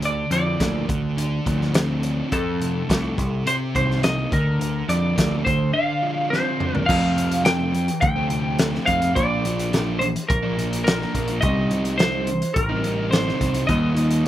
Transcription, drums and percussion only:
0.02 closed hi-hat
0.31 closed hi-hat
0.60 kick, snare, closed hi-hat
0.89 kick, closed hi-hat
1.18 closed hi-hat
1.46 kick, closed hi-hat
1.62 snare
1.74 snare, closed hi-hat
2.03 closed hi-hat
2.32 kick, closed hi-hat
2.62 closed hi-hat
2.90 kick, snare, closed hi-hat
3.18 kick, closed hi-hat
3.47 closed hi-hat
3.75 kick, closed hi-hat
3.91 snare
4.03 snare, closed hi-hat
4.32 kick, closed hi-hat
4.61 closed hi-hat
4.89 closed hi-hat
5.18 kick, snare, closed hi-hat
5.46 kick, closed hi-hat
6.33 snare
6.60 mid tom
6.75 floor tom
6.89 kick, crash
7.18 closed hi-hat
7.32 closed hi-hat
7.45 snare, closed hi-hat
7.75 closed hi-hat
7.88 closed hi-hat
8.02 kick, closed hi-hat
8.30 closed hi-hat
8.59 snare, closed hi-hat
8.75 snare
8.87 kick, closed hi-hat
9.02 closed hi-hat
9.16 kick, closed hi-hat
9.45 closed hi-hat
9.59 closed hi-hat
9.73 snare, closed hi-hat
10.01 closed hi-hat
10.16 closed hi-hat
10.30 kick, closed hi-hat
10.59 closed hi-hat
10.73 closed hi-hat
10.87 snare, closed hi-hat
11.02 snare
11.15 kick, closed hi-hat
11.28 closed hi-hat
11.42 kick, closed hi-hat
11.71 closed hi-hat
11.85 closed hi-hat
11.99 snare, closed hi-hat
12.27 closed hi-hat
12.42 closed hi-hat
12.56 kick, closed hi-hat
12.84 closed hi-hat
13.13 snare, closed hi-hat
13.28 snare
13.41 kick, closed hi-hat
13.54 closed hi-hat
13.69 kick, closed hi-hat
13.97 closed hi-hat
14.11 closed hi-hat

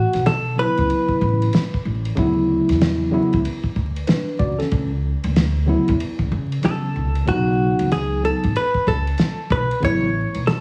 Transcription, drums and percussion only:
0.13 snare, ride
0.26 snare, hi-hat pedal, ride
0.77 kick, ride
0.90 ride
1.09 kick
1.21 kick
1.42 ride
1.53 snare, hi-hat pedal, ride
1.74 kick
2.05 ride
2.17 kick, ride
2.69 snare, ride
2.81 snare, hi-hat pedal, ride
3.33 kick, ride
3.45 ride
3.64 kick
3.76 kick
3.96 ride
4.07 snare, hi-hat pedal, ride
4.39 kick
4.60 snare, ride
4.71 kick, ride
5.24 ride
5.36 snare, hi-hat pedal, ride
5.88 kick, ride
6.00 ride
6.19 kick
6.32 kick
6.52 ride
6.63 snare, hi-hat pedal, ride
7.15 ride
7.27 kick, ride
7.79 ride
7.92 snare, hi-hat pedal, ride
8.43 kick, ride
8.56 ride
8.74 kick
8.87 kick
9.07 ride
9.18 snare, hi-hat pedal, ride
9.50 kick
9.71 ride
9.83 kick, ride
10.34 ride
10.47 snare, hi-hat pedal, ride

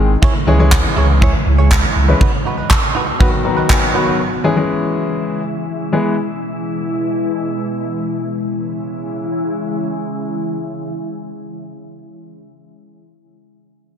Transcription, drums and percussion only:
0.23 kick
0.72 kick, clap
1.22 kick
1.71 kick, clap
2.21 kick
2.71 kick, clap
3.21 kick
3.70 kick, clap

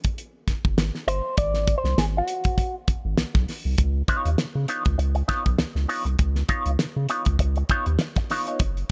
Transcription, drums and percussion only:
0.04 kick, closed hi-hat
0.18 closed hi-hat
0.48 kick, snare, closed hi-hat
0.65 kick
0.78 snare, closed hi-hat
0.95 snare
1.08 closed hi-hat
1.37 kick, closed hi-hat
1.54 snare, closed hi-hat
1.67 kick, closed hi-hat
1.85 snare
1.98 snare, closed hi-hat
2.28 closed hi-hat
2.44 kick, closed hi-hat
2.58 kick, closed hi-hat
2.88 kick, closed hi-hat
3.18 snare, closed hi-hat
3.34 kick, snare
3.48 snare, open hi-hat
3.78 kick, closed hi-hat
4.08 kick, closed hi-hat
4.25 closed hi-hat
4.38 snare, closed hi-hat
4.68 closed hi-hat
4.85 kick, closed hi-hat
4.99 closed hi-hat
5.15 closed hi-hat
5.29 kick, snare, closed hi-hat
5.46 kick, closed hi-hat
5.59 snare, closed hi-hat
5.76 snare
5.89 open hi-hat
6.06 closed hi-hat
6.19 kick, closed hi-hat
6.36 snare, closed hi-hat
6.49 kick, closed hi-hat
6.66 closed hi-hat
6.79 snare, closed hi-hat
7.09 closed hi-hat
7.25 kick, closed hi-hat
7.39 kick, closed hi-hat
7.56 closed hi-hat
7.69 kick, closed hi-hat
7.86 closed hi-hat
7.99 snare, closed hi-hat
8.16 kick, snare, closed hi-hat
8.30 snare, open hi-hat
8.47 closed hi-hat
8.59 kick, closed hi-hat
8.77 closed hi-hat

